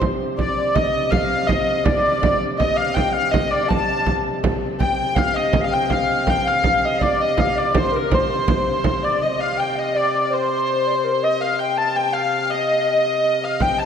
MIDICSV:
0, 0, Header, 1, 5, 480
1, 0, Start_track
1, 0, Tempo, 367422
1, 496, Time_signature, 6, 3, 24, 8
1, 18098, End_track
2, 0, Start_track
2, 0, Title_t, "Hurdy-gurdy"
2, 0, Program_c, 0, 110
2, 506, Note_on_c, 0, 74, 74
2, 979, Note_off_c, 0, 74, 0
2, 979, Note_on_c, 0, 75, 84
2, 1447, Note_off_c, 0, 75, 0
2, 1447, Note_on_c, 0, 77, 90
2, 1918, Note_off_c, 0, 77, 0
2, 1918, Note_on_c, 0, 75, 81
2, 2405, Note_on_c, 0, 74, 90
2, 2411, Note_off_c, 0, 75, 0
2, 3136, Note_off_c, 0, 74, 0
2, 3371, Note_on_c, 0, 75, 81
2, 3612, Note_off_c, 0, 75, 0
2, 3612, Note_on_c, 0, 77, 97
2, 3843, Note_on_c, 0, 79, 93
2, 3860, Note_off_c, 0, 77, 0
2, 4087, Note_on_c, 0, 77, 94
2, 4095, Note_off_c, 0, 79, 0
2, 4327, Note_on_c, 0, 75, 96
2, 4338, Note_off_c, 0, 77, 0
2, 4586, Note_off_c, 0, 75, 0
2, 4586, Note_on_c, 0, 74, 85
2, 4819, Note_on_c, 0, 81, 94
2, 4828, Note_off_c, 0, 74, 0
2, 5365, Note_off_c, 0, 81, 0
2, 6276, Note_on_c, 0, 79, 87
2, 6765, Note_off_c, 0, 79, 0
2, 6765, Note_on_c, 0, 77, 96
2, 7005, Note_off_c, 0, 77, 0
2, 7005, Note_on_c, 0, 75, 97
2, 7370, Note_off_c, 0, 75, 0
2, 7370, Note_on_c, 0, 77, 88
2, 7491, Note_off_c, 0, 77, 0
2, 7491, Note_on_c, 0, 79, 87
2, 7626, Note_off_c, 0, 79, 0
2, 7626, Note_on_c, 0, 79, 73
2, 7738, Note_off_c, 0, 79, 0
2, 7738, Note_on_c, 0, 77, 93
2, 8225, Note_off_c, 0, 77, 0
2, 8225, Note_on_c, 0, 79, 97
2, 8459, Note_off_c, 0, 79, 0
2, 8459, Note_on_c, 0, 77, 93
2, 8950, Note_off_c, 0, 77, 0
2, 8950, Note_on_c, 0, 75, 90
2, 9175, Note_off_c, 0, 75, 0
2, 9175, Note_on_c, 0, 74, 77
2, 9422, Note_off_c, 0, 74, 0
2, 9422, Note_on_c, 0, 75, 91
2, 9666, Note_off_c, 0, 75, 0
2, 9666, Note_on_c, 0, 77, 95
2, 9902, Note_off_c, 0, 77, 0
2, 9902, Note_on_c, 0, 74, 80
2, 10157, Note_off_c, 0, 74, 0
2, 10157, Note_on_c, 0, 72, 83
2, 10402, Note_off_c, 0, 72, 0
2, 10402, Note_on_c, 0, 70, 86
2, 10638, Note_off_c, 0, 70, 0
2, 10638, Note_on_c, 0, 72, 75
2, 11815, Note_off_c, 0, 72, 0
2, 11815, Note_on_c, 0, 74, 73
2, 12048, Note_off_c, 0, 74, 0
2, 12048, Note_on_c, 0, 75, 75
2, 12284, Note_off_c, 0, 75, 0
2, 12284, Note_on_c, 0, 77, 79
2, 12536, Note_off_c, 0, 77, 0
2, 12536, Note_on_c, 0, 79, 76
2, 12786, Note_off_c, 0, 79, 0
2, 12786, Note_on_c, 0, 75, 84
2, 13019, Note_off_c, 0, 75, 0
2, 13019, Note_on_c, 0, 74, 83
2, 13389, Note_off_c, 0, 74, 0
2, 13389, Note_on_c, 0, 74, 56
2, 13494, Note_off_c, 0, 74, 0
2, 13494, Note_on_c, 0, 72, 85
2, 14685, Note_off_c, 0, 72, 0
2, 14685, Note_on_c, 0, 75, 88
2, 14908, Note_off_c, 0, 75, 0
2, 14908, Note_on_c, 0, 77, 80
2, 15142, Note_on_c, 0, 79, 81
2, 15147, Note_off_c, 0, 77, 0
2, 15380, Note_off_c, 0, 79, 0
2, 15380, Note_on_c, 0, 81, 90
2, 15626, Note_off_c, 0, 81, 0
2, 15626, Note_on_c, 0, 79, 87
2, 15854, Note_on_c, 0, 77, 92
2, 15865, Note_off_c, 0, 79, 0
2, 16337, Note_off_c, 0, 77, 0
2, 16337, Note_on_c, 0, 75, 91
2, 17559, Note_off_c, 0, 75, 0
2, 17559, Note_on_c, 0, 77, 89
2, 17787, Note_off_c, 0, 77, 0
2, 17787, Note_on_c, 0, 79, 88
2, 18024, Note_off_c, 0, 79, 0
2, 18024, Note_on_c, 0, 81, 93
2, 18098, Note_off_c, 0, 81, 0
2, 18098, End_track
3, 0, Start_track
3, 0, Title_t, "Recorder"
3, 0, Program_c, 1, 74
3, 488, Note_on_c, 1, 74, 69
3, 716, Note_off_c, 1, 74, 0
3, 736, Note_on_c, 1, 74, 65
3, 980, Note_on_c, 1, 75, 64
3, 999, Note_off_c, 1, 74, 0
3, 1070, Note_on_c, 1, 74, 61
3, 1090, Note_off_c, 1, 75, 0
3, 1145, Note_on_c, 1, 75, 76
3, 1164, Note_off_c, 1, 74, 0
3, 1466, Note_on_c, 1, 77, 74
3, 1486, Note_off_c, 1, 75, 0
3, 1535, Note_on_c, 1, 75, 55
3, 1554, Note_off_c, 1, 77, 0
3, 1631, Note_on_c, 1, 77, 73
3, 1651, Note_off_c, 1, 75, 0
3, 1938, Note_on_c, 1, 75, 78
3, 1957, Note_off_c, 1, 77, 0
3, 2416, Note_off_c, 1, 75, 0
3, 2424, Note_on_c, 1, 74, 70
3, 3095, Note_off_c, 1, 74, 0
3, 3401, Note_on_c, 1, 75, 82
3, 3623, Note_on_c, 1, 77, 84
3, 3642, Note_off_c, 1, 75, 0
3, 3865, Note_off_c, 1, 77, 0
3, 3883, Note_on_c, 1, 79, 75
3, 4094, Note_off_c, 1, 79, 0
3, 4102, Note_on_c, 1, 77, 85
3, 4323, Note_off_c, 1, 77, 0
3, 4331, Note_on_c, 1, 75, 74
3, 4573, Note_on_c, 1, 74, 82
3, 4593, Note_off_c, 1, 75, 0
3, 4812, Note_on_c, 1, 81, 83
3, 4832, Note_off_c, 1, 74, 0
3, 5362, Note_off_c, 1, 81, 0
3, 6260, Note_on_c, 1, 79, 88
3, 6729, Note_on_c, 1, 77, 83
3, 6748, Note_off_c, 1, 79, 0
3, 6977, Note_on_c, 1, 75, 94
3, 6997, Note_off_c, 1, 77, 0
3, 7331, Note_on_c, 1, 77, 77
3, 7350, Note_off_c, 1, 75, 0
3, 7440, Note_off_c, 1, 77, 0
3, 7448, Note_on_c, 1, 79, 86
3, 7683, Note_off_c, 1, 79, 0
3, 7695, Note_on_c, 1, 77, 81
3, 8150, Note_off_c, 1, 77, 0
3, 8173, Note_on_c, 1, 79, 81
3, 8403, Note_off_c, 1, 79, 0
3, 8411, Note_on_c, 1, 77, 100
3, 9130, Note_on_c, 1, 74, 84
3, 9150, Note_off_c, 1, 77, 0
3, 9371, Note_off_c, 1, 74, 0
3, 9379, Note_on_c, 1, 75, 72
3, 9596, Note_off_c, 1, 75, 0
3, 9604, Note_on_c, 1, 77, 75
3, 9875, Note_on_c, 1, 74, 83
3, 9894, Note_off_c, 1, 77, 0
3, 10120, Note_on_c, 1, 72, 70
3, 10140, Note_off_c, 1, 74, 0
3, 10345, Note_on_c, 1, 70, 64
3, 10364, Note_off_c, 1, 72, 0
3, 10589, Note_off_c, 1, 70, 0
3, 10605, Note_on_c, 1, 72, 70
3, 11393, Note_off_c, 1, 72, 0
3, 11792, Note_on_c, 1, 74, 72
3, 12015, Note_off_c, 1, 74, 0
3, 12034, Note_on_c, 1, 75, 75
3, 12112, Note_off_c, 1, 75, 0
3, 12270, Note_on_c, 1, 77, 69
3, 12511, Note_on_c, 1, 79, 72
3, 12530, Note_off_c, 1, 77, 0
3, 12749, Note_on_c, 1, 75, 83
3, 12768, Note_off_c, 1, 79, 0
3, 12979, Note_on_c, 1, 74, 70
3, 12998, Note_off_c, 1, 75, 0
3, 13459, Note_on_c, 1, 72, 77
3, 13478, Note_off_c, 1, 74, 0
3, 14202, Note_on_c, 1, 74, 63
3, 14221, Note_off_c, 1, 72, 0
3, 14311, Note_on_c, 1, 72, 62
3, 14330, Note_off_c, 1, 74, 0
3, 14428, Note_on_c, 1, 70, 57
3, 14447, Note_off_c, 1, 72, 0
3, 14539, Note_on_c, 1, 72, 64
3, 14559, Note_off_c, 1, 70, 0
3, 14671, Note_on_c, 1, 75, 70
3, 14691, Note_off_c, 1, 72, 0
3, 14909, Note_on_c, 1, 77, 73
3, 14928, Note_off_c, 1, 75, 0
3, 15138, Note_off_c, 1, 77, 0
3, 15145, Note_on_c, 1, 79, 80
3, 15393, Note_on_c, 1, 81, 80
3, 15412, Note_off_c, 1, 79, 0
3, 15640, Note_on_c, 1, 79, 88
3, 15659, Note_off_c, 1, 81, 0
3, 15844, Note_on_c, 1, 77, 77
3, 15864, Note_off_c, 1, 79, 0
3, 16351, Note_on_c, 1, 75, 87
3, 16371, Note_off_c, 1, 77, 0
3, 17439, Note_off_c, 1, 75, 0
3, 17784, Note_on_c, 1, 79, 89
3, 18010, Note_on_c, 1, 81, 89
3, 18029, Note_off_c, 1, 79, 0
3, 18098, Note_off_c, 1, 81, 0
3, 18098, End_track
4, 0, Start_track
4, 0, Title_t, "Harmonium"
4, 0, Program_c, 2, 20
4, 0, Note_on_c, 2, 48, 78
4, 495, Note_off_c, 2, 48, 0
4, 515, Note_on_c, 2, 48, 78
4, 6264, Note_off_c, 2, 48, 0
4, 6283, Note_on_c, 2, 48, 77
4, 12014, Note_off_c, 2, 48, 0
4, 12033, Note_on_c, 2, 48, 70
4, 17734, Note_off_c, 2, 48, 0
4, 17754, Note_on_c, 2, 48, 71
4, 18098, Note_off_c, 2, 48, 0
4, 18098, End_track
5, 0, Start_track
5, 0, Title_t, "Frame drum"
5, 20, Note_on_c, 9, 64, 80
5, 151, Note_off_c, 9, 64, 0
5, 265, Note_on_c, 9, 64, 23
5, 396, Note_off_c, 9, 64, 0
5, 504, Note_on_c, 9, 64, 74
5, 635, Note_off_c, 9, 64, 0
5, 745, Note_on_c, 9, 64, 23
5, 876, Note_off_c, 9, 64, 0
5, 985, Note_on_c, 9, 64, 85
5, 1116, Note_off_c, 9, 64, 0
5, 1462, Note_on_c, 9, 64, 97
5, 1593, Note_off_c, 9, 64, 0
5, 1698, Note_on_c, 9, 64, 30
5, 1829, Note_off_c, 9, 64, 0
5, 1945, Note_on_c, 9, 64, 88
5, 2075, Note_off_c, 9, 64, 0
5, 2189, Note_on_c, 9, 64, 29
5, 2320, Note_off_c, 9, 64, 0
5, 2423, Note_on_c, 9, 64, 100
5, 2554, Note_off_c, 9, 64, 0
5, 2912, Note_on_c, 9, 64, 104
5, 3043, Note_off_c, 9, 64, 0
5, 3151, Note_on_c, 9, 64, 30
5, 3282, Note_off_c, 9, 64, 0
5, 3394, Note_on_c, 9, 64, 83
5, 3525, Note_off_c, 9, 64, 0
5, 3640, Note_on_c, 9, 64, 28
5, 3771, Note_off_c, 9, 64, 0
5, 3872, Note_on_c, 9, 64, 82
5, 4003, Note_off_c, 9, 64, 0
5, 4359, Note_on_c, 9, 64, 96
5, 4490, Note_off_c, 9, 64, 0
5, 4839, Note_on_c, 9, 64, 82
5, 4969, Note_off_c, 9, 64, 0
5, 5310, Note_on_c, 9, 64, 82
5, 5441, Note_off_c, 9, 64, 0
5, 5560, Note_on_c, 9, 64, 26
5, 5690, Note_off_c, 9, 64, 0
5, 5797, Note_on_c, 9, 64, 100
5, 5927, Note_off_c, 9, 64, 0
5, 6028, Note_on_c, 9, 64, 30
5, 6158, Note_off_c, 9, 64, 0
5, 6274, Note_on_c, 9, 64, 82
5, 6404, Note_off_c, 9, 64, 0
5, 6510, Note_on_c, 9, 64, 27
5, 6641, Note_off_c, 9, 64, 0
5, 6743, Note_on_c, 9, 64, 86
5, 6874, Note_off_c, 9, 64, 0
5, 7225, Note_on_c, 9, 64, 95
5, 7356, Note_off_c, 9, 64, 0
5, 7469, Note_on_c, 9, 64, 27
5, 7600, Note_off_c, 9, 64, 0
5, 7706, Note_on_c, 9, 64, 75
5, 7836, Note_off_c, 9, 64, 0
5, 7952, Note_on_c, 9, 64, 24
5, 8083, Note_off_c, 9, 64, 0
5, 8189, Note_on_c, 9, 64, 93
5, 8320, Note_off_c, 9, 64, 0
5, 8671, Note_on_c, 9, 64, 92
5, 8801, Note_off_c, 9, 64, 0
5, 8920, Note_on_c, 9, 64, 28
5, 9051, Note_off_c, 9, 64, 0
5, 9159, Note_on_c, 9, 64, 76
5, 9289, Note_off_c, 9, 64, 0
5, 9405, Note_on_c, 9, 64, 27
5, 9536, Note_off_c, 9, 64, 0
5, 9637, Note_on_c, 9, 64, 86
5, 9767, Note_off_c, 9, 64, 0
5, 10119, Note_on_c, 9, 64, 97
5, 10249, Note_off_c, 9, 64, 0
5, 10601, Note_on_c, 9, 64, 96
5, 10732, Note_off_c, 9, 64, 0
5, 10842, Note_on_c, 9, 64, 26
5, 10973, Note_off_c, 9, 64, 0
5, 11076, Note_on_c, 9, 64, 94
5, 11207, Note_off_c, 9, 64, 0
5, 11551, Note_on_c, 9, 64, 95
5, 11682, Note_off_c, 9, 64, 0
5, 17771, Note_on_c, 9, 64, 82
5, 17901, Note_off_c, 9, 64, 0
5, 18098, End_track
0, 0, End_of_file